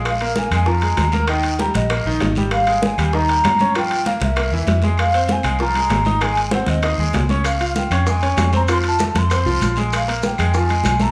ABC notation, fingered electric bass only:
X:1
M:4/4
L:1/8
Q:1/4=195
K:Fm
V:1 name="Fingered electric bass" clef=bass
B,,,3 F,,3 E,,2- | E,,3 B,,,2 B,,, A,,,2- | A,,,3 E,,3 G,,2- | G,,3 C,,2 =E,, F,,2- |
F,,3 C,,3 A,,,2- | A,,,3 E,,2 E,, D,,2- | D,,3 F,,3 F,,2- | F,,3 F,,2 C,, B,,,2- |
B,,,3 F,,3 =B,,,2 |]